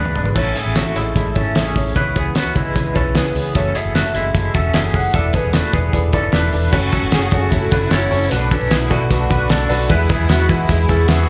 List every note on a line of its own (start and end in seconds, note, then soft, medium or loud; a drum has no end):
0.00 0.18 D2 medium
0.00 0.15 E3 medium
0.00 0.16 B3 medium
0.00 0.16 D4 medium
0.00 0.14 G#4 medium
0.00 0.33 B4 medium
0.00 0.38 B4 medium
0.05 mid tom medium
0.15 0.32 G#1 medium
0.15 0.36 B3 soft
0.15 0.36 D4 soft
0.15 0.36 G#4 medium
0.15 floor tom medium
0.26 floor tom medium
0.34 0.52 A1 loud
0.34 0.56 A2 medium
0.34 0.56 E3 medium
0.34 0.56 A3 medium
0.34 0.56 C#4 medium
0.34 0.52 E4 medium
0.34 0.55 E4 medium
0.34 0.52 A4 medium
0.34 0.54 A4 medium
0.34 0.52 C#5 loud
0.34 0.56 C#5 medium
0.34 kick loud
0.34 crash medium
0.54 0.75 A3 soft
0.54 0.76 B3 medium
0.54 0.76 C#4 soft
0.54 0.72 E4 medium
0.54 0.76 E4 soft
0.54 0.76 G#4 medium
0.54 0.72 A4 medium
0.54 0.76 A4 medium
0.54 0.73 C#5 medium
0.54 1.12 E5 medium
0.54 closed hi-hat medium
0.66 0.82 A1 medium
0.75 0.96 A2 medium
0.75 0.96 E3 medium
0.75 0.96 A3 medium
0.75 0.96 C#4 medium
0.75 0.93 E4 medium
0.75 0.95 E4 medium
0.75 0.96 F#4 medium
0.75 0.93 A4 medium
0.75 0.94 A4 medium
0.75 0.93 C#5 medium
0.75 snare loud
0.75 closed hi-hat medium
0.95 1.12 A1 medium
0.95 1.34 G#3 medium
0.95 1.14 A3 soft
0.95 1.16 C#4 soft
0.95 1.12 E4 medium
0.95 1.16 E4 soft
0.95 1.13 A4 medium
0.95 1.16 A4 medium
0.95 1.13 C#5 medium
0.95 closed hi-hat medium
1.15 1.32 A1 medium
1.15 1.36 A3 medium
1.15 1.36 C#4 medium
1.15 1.32 E4 medium
1.15 1.36 E4 medium
1.15 1.33 A4 medium
1.15 1.35 A4 medium
1.15 1.33 C#5 medium
1.15 1.78 E5 medium
1.15 kick medium
1.15 closed hi-hat medium
1.35 1.52 G#1 medium
1.35 1.56 A3 soft
1.35 1.56 C#4 soft
1.35 1.52 E4 medium
1.35 1.56 E4 soft
1.35 1.52 A4 medium
1.35 1.56 A4 medium
1.35 1.53 C#5 loud
1.35 kick medium
1.35 closed hi-hat medium
1.55 1.72 A1 medium
1.55 1.76 A2 medium
1.55 1.76 E3 medium
1.55 1.76 A3 medium
1.55 1.76 C#4 medium
1.55 1.72 E4 medium
1.55 1.75 E4 medium
1.55 1.93 G#4 medium
1.55 1.72 A4 medium
1.55 1.74 A4 medium
1.55 1.73 C#5 medium
1.55 snare loud
1.55 closed hi-hat medium
1.75 1.92 A1 medium
1.75 1.96 A3 soft
1.75 1.95 C#4 soft
1.75 1.92 E4 medium
1.75 1.96 E4 medium
1.75 1.93 A4 medium
1.75 1.96 A4 soft
1.75 1.93 C#5 medium
1.75 1.95 C#5 medium
1.75 kick medium
1.75 open hi-hat medium
1.95 2.12 C#2 loud
1.95 2.15 C#3 medium
1.95 2.16 E3 medium
1.95 2.16 B3 medium
1.95 2.15 C#4 medium
1.95 2.12 E4 medium
1.95 2.16 E4 medium
1.95 2.14 G#4 medium
1.95 2.12 B4 medium
1.95 2.16 B4 medium
1.95 2.05 C#5 medium
1.95 2.13 C#5 medium
1.95 kick medium
1.95 closed hi-hat medium
2.15 2.35 B3 soft
2.15 2.36 C#4 soft
2.15 2.32 E4 medium
2.15 2.35 G#4 medium
2.15 2.32 B4 medium
2.15 3.12 B4 medium
2.15 2.33 C#5 medium
2.15 kick medium
2.15 closed hi-hat medium
2.26 2.42 C#2 medium
2.35 2.55 C#3 medium
2.35 2.56 E3 medium
2.35 2.56 B3 medium
2.35 2.56 C#4 medium
2.35 2.52 E4 medium
2.35 2.56 F#4 medium
2.35 2.54 G#4 medium
2.35 2.52 B4 medium
2.35 2.52 C#5 medium
2.35 snare loud
2.35 closed hi-hat medium
2.55 2.72 C#2 medium
2.55 2.94 G#3 medium
2.55 2.75 B3 soft
2.55 2.75 C#4 soft
2.55 2.72 E4 medium
2.55 2.93 E4 medium
2.55 2.75 G#4 medium
2.55 2.72 B4 medium
2.55 2.73 C#5 medium
2.55 kick medium
2.55 closed hi-hat medium
2.75 2.92 C#2 medium
2.75 2.95 E3 medium
2.75 2.95 B3 medium
2.75 2.95 C#4 medium
2.75 2.92 E4 medium
2.75 2.94 G#4 medium
2.75 2.92 B4 medium
2.75 2.93 C#5 medium
2.75 kick medium
2.75 closed hi-hat medium
2.94 3.12 B1 medium
2.94 3.15 B3 soft
2.94 3.15 C#4 medium
2.94 3.12 E4 loud
2.94 3.15 G#4 medium
2.94 3.15 A4 medium
2.94 3.12 B4 medium
2.94 3.12 C#5 loud
2.94 kick medium
2.94 closed hi-hat medium
3.14 3.32 C#2 loud
3.14 3.35 C#3 medium
3.14 3.35 E3 medium
3.14 3.36 B3 medium
3.14 3.35 C#4 medium
3.14 3.31 E4 medium
3.14 3.34 G#4 medium
3.14 3.32 B4 medium
3.14 3.53 B4 medium
3.14 3.32 C#5 medium
3.14 snare loud
3.14 closed hi-hat medium
3.35 3.52 C#2 medium
3.35 3.56 B3 soft
3.35 3.55 C#4 medium
3.35 3.52 E4 medium
3.35 3.55 G#4 medium
3.35 3.52 B4 medium
3.35 3.52 C#5 medium
3.35 open hi-hat medium
3.55 3.71 F#1 medium
3.55 3.75 F#2 medium
3.55 3.75 C#3 medium
3.55 3.75 E3 medium
3.55 3.75 A3 medium
3.55 3.75 C#4 medium
3.55 3.72 F#4 medium
3.55 3.72 A4 medium
3.55 3.74 A4 medium
3.55 3.78 C#5 medium
3.55 3.72 E5 loud
3.55 kick loud
3.55 closed hi-hat medium
3.75 3.95 E3 soft
3.75 3.95 A3 medium
3.75 3.95 B3 medium
3.75 3.95 C#4 medium
3.75 3.92 F#4 medium
3.75 3.95 G#4 medium
3.75 3.95 A4 medium
3.75 3.92 A4 medium
3.75 3.92 E5 medium
3.75 4.34 E5 loud
3.75 closed hi-hat medium
3.85 4.01 F#1 medium
3.94 4.15 F#2 medium
3.94 4.15 C#3 medium
3.94 4.15 E3 medium
3.94 4.15 A3 medium
3.94 4.14 C#4 medium
3.94 4.11 F#4 medium
3.94 4.14 F#4 medium
3.94 4.12 A4 medium
3.94 4.13 A4 medium
3.94 4.12 E5 medium
3.94 snare loud
3.94 closed hi-hat medium
4.14 4.31 F#1 medium
4.14 4.34 E3 soft
4.14 4.52 G#3 medium
4.14 4.34 A3 soft
4.14 4.35 C#4 medium
4.14 4.52 E4 medium
4.14 4.31 F#4 medium
4.14 4.31 A4 medium
4.14 4.34 A4 medium
4.14 4.32 E5 medium
4.14 closed hi-hat medium
4.34 4.51 F#1 loud
4.34 4.55 E3 medium
4.34 4.55 A3 medium
4.34 4.54 C#4 medium
4.34 4.51 F#4 medium
4.34 4.51 A4 medium
4.34 4.53 A4 medium
4.34 4.51 E5 medium
4.34 4.96 E5 loud
4.34 kick medium
4.34 closed hi-hat medium
4.54 4.71 E1 loud
4.54 4.74 E3 soft
4.54 4.75 A3 soft
4.54 4.75 C#4 medium
4.54 4.71 F#4 medium
4.54 4.71 A4 medium
4.54 4.74 A4 medium
4.54 4.71 E5 loud
4.54 kick medium
4.54 closed hi-hat medium
4.74 4.91 F#1 medium
4.74 4.94 F#2 medium
4.74 4.95 C#3 medium
4.74 4.95 E3 medium
4.74 4.95 A3 medium
4.74 4.94 C#4 medium
4.74 4.91 F#4 medium
4.74 5.12 G#4 medium
4.74 4.91 A4 medium
4.74 4.93 A4 medium
4.74 4.91 E5 loud
4.74 snare loud
4.74 closed hi-hat medium
4.94 5.10 F#1 medium
4.94 5.13 E3 soft
4.94 5.14 A3 soft
4.94 5.15 C#4 medium
4.94 5.11 F#4 medium
4.94 5.14 A4 medium
4.94 5.11 A4 medium
4.94 5.12 E5 medium
4.94 5.17 F#5 loud
4.94 kick medium
4.94 open hi-hat medium
5.14 5.30 E1 loud
5.14 5.34 E3 medium
5.14 5.34 A3 medium
5.14 5.34 D4 medium
5.14 5.31 E4 medium
5.14 5.31 A4 medium
5.14 5.34 A4 medium
5.14 5.33 B4 medium
5.14 5.31 D5 loud
5.14 5.35 E5 loud
5.14 kick loud
5.14 closed hi-hat medium
5.33 5.54 B3 medium
5.33 5.54 D4 soft
5.33 5.51 E4 medium
5.33 5.54 G#4 medium
5.33 5.51 A4 medium
5.33 5.54 A4 medium
5.33 6.53 B4 loud
5.33 5.54 B4 soft
5.33 5.51 D5 medium
5.33 kick medium
5.33 closed hi-hat medium
5.44 5.60 E1 medium
5.53 5.74 E3 medium
5.53 5.74 A3 medium
5.53 5.74 D4 medium
5.53 5.70 E4 medium
5.53 5.73 F#4 medium
5.53 5.70 A4 medium
5.53 5.74 A4 medium
5.53 5.72 B4 medium
5.53 5.71 D5 medium
5.53 snare loud
5.53 closed hi-hat medium
5.73 5.90 E1 loud
5.73 6.11 B3 medium
5.73 5.93 D4 soft
5.73 5.90 E4 medium
5.73 6.11 G#4 medium
5.73 5.90 A4 medium
5.73 5.94 A4 soft
5.73 5.93 B4 medium
5.73 5.91 D5 medium
5.73 kick medium
5.73 closed hi-hat medium
5.92 6.14 E1 loud
5.92 6.13 A3 medium
5.92 6.14 D4 medium
5.92 6.10 E4 medium
5.92 6.10 A4 medium
5.92 6.13 A4 medium
5.92 6.12 B4 medium
5.92 6.10 D5 medium
5.92 kick medium
5.92 closed hi-hat medium
6.13 6.30 F#1 medium
6.13 6.34 C#4 medium
6.13 6.33 D4 soft
6.13 6.30 E4 loud
6.13 6.30 A4 loud
6.13 6.34 A4 medium
6.13 6.33 B4 medium
6.13 6.30 D5 loud
6.13 kick medium
6.13 closed hi-hat medium
6.32 6.49 E1 loud
6.32 6.53 E3 medium
6.32 6.53 A3 medium
6.32 6.54 D4 loud
6.32 6.50 E4 loud
6.32 6.50 A4 loud
6.32 6.53 A4 medium
6.32 6.51 B4 loud
6.32 6.50 D5 loud
6.32 snare loud
6.32 closed hi-hat medium
6.52 6.69 E1 loud
6.52 6.73 D4 soft
6.52 6.70 E4 medium
6.52 6.70 A4 medium
6.52 6.73 A4 medium
6.52 6.73 B4 medium
6.52 6.70 D5 loud
6.52 open hi-hat medium
6.72 6.89 F#1 loud
6.72 6.93 F#3 loud
6.72 6.93 A3 loud
6.72 6.89 C#4 loud
6.72 6.92 C#4 loud
6.72 7.48 F#4 loud
6.72 6.90 F#4 loud
6.72 6.90 A4 loud
6.72 6.92 B4 medium
6.72 6.90 C#5 loud
6.72 kick loud
6.72 crash medium
6.92 7.11 A3 medium
6.92 7.10 C#4 medium
6.92 7.12 C#4 medium
6.92 7.12 F#4 medium
6.92 7.10 F#4 medium
6.92 7.12 A4 medium
6.92 7.10 A4 medium
6.92 7.10 C#5 medium
6.92 kick medium
6.92 closed hi-hat medium
7.03 7.11 F#1 medium
7.12 7.28 F#1 loud
7.12 7.32 F#3 medium
7.12 7.32 A3 medium
7.12 7.29 C#4 medium
7.12 7.33 C#4 medium
7.12 7.30 F#4 medium
7.12 7.31 F#4 medium
7.12 7.33 G#4 medium
7.12 7.53 G#4 medium
7.12 7.29 A4 medium
7.12 7.30 C#5 medium
7.12 snare loud
7.12 closed hi-hat medium
7.31 7.53 F#2 loud
7.31 7.51 A3 soft
7.31 7.49 C#4 medium
7.31 7.52 C#4 medium
7.31 7.52 F#4 medium
7.31 7.49 F#4 medium
7.31 7.49 A4 loud
7.31 7.50 C#5 loud
7.31 kick medium
7.31 closed hi-hat medium
7.52 7.68 F#1 medium
7.52 7.72 F#3 medium
7.52 7.72 A3 medium
7.52 7.69 C#4 medium
7.52 7.72 C#4 medium
7.52 8.32 E4 medium
7.52 7.69 F#4 medium
7.52 7.71 F#4 medium
7.52 7.91 A4 loud
7.52 7.69 A4 medium
7.52 7.70 C#5 medium
7.52 kick medium
7.52 closed hi-hat medium
7.71 7.88 F#1 loud
7.71 7.91 A3 medium
7.71 7.88 C#4 medium
7.71 7.92 C#4 medium
7.71 7.92 D4 medium
7.71 7.88 F#4 medium
7.71 7.92 F#4 medium
7.71 7.89 A4 medium
7.71 7.92 B4 medium
7.71 7.88 C#5 medium
7.71 kick medium
7.71 closed hi-hat medium
7.90 8.08 F#1 loud
7.90 8.11 F#3 medium
7.90 8.12 A3 medium
7.90 8.08 C#4 medium
7.90 8.11 C#4 medium
7.90 8.08 F#4 medium
7.90 8.08 A4 medium
7.90 8.29 A4 medium
7.90 8.31 C#5 loud
7.90 8.08 C#5 medium
7.90 snare loud
7.90 closed hi-hat medium
7.94 8.10 F#4 medium
8.10 8.28 F#1 medium
8.10 8.31 A3 soft
8.10 8.28 C#4 loud
8.10 8.32 C#4 medium
8.10 8.28 F#4 medium
8.10 8.31 F#4 medium
8.10 8.28 A4 loud
8.10 8.28 C#5 loud
8.10 open hi-hat medium
8.29 8.48 B1 loud
8.29 8.51 B2 medium
8.29 8.51 F#3 medium
8.29 8.51 A3 medium
8.29 8.48 D4 loud
8.29 8.71 D4 medium
8.29 8.51 D4 medium
8.29 8.48 F#4 medium
8.29 8.50 F#4 medium
8.29 8.48 A4 medium
8.29 9.10 B4 loud
8.29 8.48 B4 loud
8.29 8.51 B4 medium
8.29 closed hi-hat loud
8.51 8.70 A3 soft
8.51 8.72 C#4 medium
8.51 8.68 D4 medium
8.51 8.71 D4 soft
8.51 8.71 F#4 medium
8.51 8.68 F#4 medium
8.51 8.68 A4 medium
8.51 8.71 A4 medium
8.51 8.68 B4 medium
8.51 kick medium
8.51 closed hi-hat medium
8.61 8.69 B1 medium
8.70 8.87 B1 medium
8.70 8.91 F#3 medium
8.70 8.91 A3 medium
8.70 8.91 B3 medium
8.70 8.87 D4 medium
8.70 8.91 D4 medium
8.70 9.11 E4 loud
8.70 8.88 F#4 medium
8.70 8.89 F#4 medium
8.70 8.91 G#4 medium
8.70 8.88 A4 medium
8.70 8.88 B4 medium
8.70 snare loud
8.70 closed hi-hat loud
8.90 9.07 B2 loud
8.90 9.10 A3 medium
8.90 9.07 D4 loud
8.90 9.11 D4 medium
8.90 9.07 F#4 loud
8.90 9.10 F#4 medium
8.90 9.08 A4 loud
8.90 9.08 B4 loud
8.90 kick medium
8.90 closed hi-hat medium
9.10 9.27 B1 loud
9.10 9.30 B2 medium
9.10 9.31 F#3 medium
9.10 9.31 A3 loud
9.10 9.27 D4 medium
9.10 9.29 D4 medium
9.10 9.30 D4 medium
9.10 9.27 F#4 medium
9.10 9.29 F#4 medium
9.10 9.27 A4 medium
9.10 9.28 B4 loud
9.10 kick medium
9.10 closed hi-hat medium
9.29 9.47 B1 loud
9.29 9.50 A3 medium
9.29 9.46 D4 medium
9.29 9.51 D4 medium
9.29 9.47 F#4 medium
9.29 9.50 F#4 medium
9.29 9.47 A4 medium
9.29 9.47 B4 loud
9.29 9.50 B4 medium
9.29 kick loud
9.29 closed hi-hat medium
9.49 9.67 B1 loud
9.49 9.70 F#3 medium
9.49 9.71 A3 medium
9.49 9.67 D4 medium
9.49 9.70 D4 medium
9.49 9.67 F#4 medium
9.49 9.68 F#4 medium
9.49 9.67 A4 medium
9.49 9.88 A4 medium
9.49 9.67 B4 medium
9.49 snare loud
9.49 closed hi-hat medium
9.69 9.86 B1 loud
9.69 9.90 A3 medium
9.69 9.86 D4 loud
9.69 9.90 D4 medium
9.69 9.86 F#4 loud
9.69 9.90 F#4 medium
9.69 9.87 A4 loud
9.69 9.87 B4 loud
9.69 open hi-hat medium
9.88 10.06 E2 loud
9.88 10.10 E3 loud
9.88 10.10 G#3 loud
9.88 10.06 B3 loud
9.88 10.10 B3 loud
9.88 10.06 E4 loud
9.88 10.68 E4 loud
9.88 10.08 E4 loud
9.88 10.06 G#4 loud
9.88 10.07 B4 loud
9.88 10.10 B4 medium
9.88 kick loud
9.88 closed hi-hat medium
10.09 10.29 G#3 medium
10.09 10.26 B3 medium
10.09 10.30 B3 medium
10.09 10.26 E4 medium
10.09 10.29 E4 medium
10.09 10.26 G#4 medium
10.09 10.30 G#4 medium
10.09 10.27 B4 medium
10.09 kick loud
10.09 closed hi-hat medium
10.20 10.28 E2 loud
10.29 10.46 E2 medium
10.29 10.49 E3 medium
10.29 10.50 G#3 medium
10.29 10.46 B3 medium
10.29 10.50 B3 medium
10.29 10.46 E4 medium
10.29 10.48 E4 medium
10.29 10.49 F#4 medium
10.29 10.72 F#4 medium
10.29 10.46 G#4 medium
10.29 10.46 B4 medium
10.29 snare loud
10.29 closed hi-hat medium
10.48 10.66 E3 loud
10.48 10.69 G#3 soft
10.48 10.66 B3 loud
10.48 10.69 B3 soft
10.48 10.66 E4 medium
10.48 10.69 E4 medium
10.48 10.66 G#4 medium
10.48 10.66 B4 loud
10.48 kick loud
10.48 closed hi-hat medium
10.68 10.86 E2 loud
10.68 10.89 E3 medium
10.68 10.90 G#3 medium
10.68 10.86 B3 medium
10.68 10.89 B3 medium
10.68 10.86 E4 medium
10.68 11.06 E4 loud
10.68 10.87 E4 medium
10.68 10.86 G#4 medium
10.68 11.09 G#4 loud
10.68 10.86 B4 medium
10.68 kick loud
10.68 closed hi-hat medium
10.89 11.05 E2 loud
10.89 11.09 G#3 medium
10.89 11.06 B3 medium
10.89 11.10 B3 medium
10.89 11.09 C#4 medium
10.89 11.09 E4 medium
10.89 11.06 E4 medium
10.89 11.06 G#4 medium
10.89 11.09 A4 medium
10.89 11.06 B4 medium
10.89 kick medium
10.89 closed hi-hat medium
11.08 11.25 E2 loud
11.08 11.29 E3 medium
11.08 11.29 G#3 medium
11.08 11.25 B3 medium
11.08 11.29 B3 medium
11.08 11.25 E4 medium
11.08 11.27 E4 medium
11.08 11.29 F#4 loud
11.08 11.26 G#4 medium
11.08 11.29 G#4 medium
11.08 11.26 B4 medium
11.08 11.28 E5 loud
11.08 snare loud
11.08 closed hi-hat medium